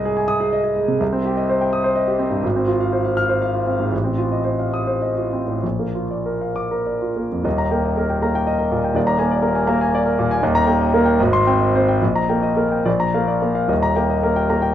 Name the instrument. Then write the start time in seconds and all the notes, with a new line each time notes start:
grand piano
Already playing: C2 G#3 G#4 D#5
0.05 G#4
0.17 G#5
0.28 D#6
0.40 G#4
0.53 D#5
0.64 G#4
0.76 G#3
0.88 C3
1.00 C2
1.13 C4
1.25 G4
1.37 D#5
1.49 C5
1.61 G5
1.73 D#6
1.84 C5
1.95 D#5
2.08 G4
2.19 C4
2.30 G2
2.43 G#1
2.56 C4
2.68 F4
2.80 F5
2.93 C5
3.05 F5
3.17 F6
3.29 C5
3.42 F5
3.55 F4
3.67 C4
3.79 G#2
3.92 A1
4.04 C4
4.18 F4
4.32 D#5
4.45 C5
4.59 F5
4.74 D#6
4.87 C5
5.02 D#5
5.18 F4
5.33 C4
5.48 A2
5.64 A#1
5.79 A#3
5.95 F4
6.10 D5
6.26 A#4
6.41 F5
6.56 D6
6.71 A#4
6.86 D5
7.02 F4
7.16 A#3
7.32 F2
7.44 D#1 D#2 D#5
7.58 A#5
7.71 A#3 G5
7.85 D#5
7.97 A#3 A#4
8.10 G5
8.22 A#3 A#5
8.35 G5
8.47 D#5
8.59 A#4
8.71 A#2
8.84 G5
8.94 D#1 D#2 D5
9.07 A#5
9.19 A#3 G#5
9.31 D5
9.42 A#3 A#4
9.55 G#5
9.67 A#3 A#5
9.81 G#5
9.94 D5
10.05 A#4
10.18 A#2
10.31 G#5
10.42 D#1 D#2 D#5
10.55 A#5
10.66 A#3 G5
10.81 D#5
10.94 A#3 A#4
11.06 G5
11.19 G#1 D#5
11.33 C6
11.47 C4 G5
11.61 D#5
11.76 C4 C5
11.89 G5
12.02 A#1 D#5
12.16 A#5
12.29 A#3 G5
12.43 D#5
12.57 A#3 A#4
12.72 G5
12.85 A#1 D5
13.00 A#5
13.14 A#3 F5
13.28 D5
13.42 A#3 A#4
13.55 F5
13.68 D#1 D#2 D#5
13.83 A#5
13.95 A#3 G5
14.10 D#5
14.23 A#3 A#4
14.36 G5
14.50 A#3 A#5
14.62 G5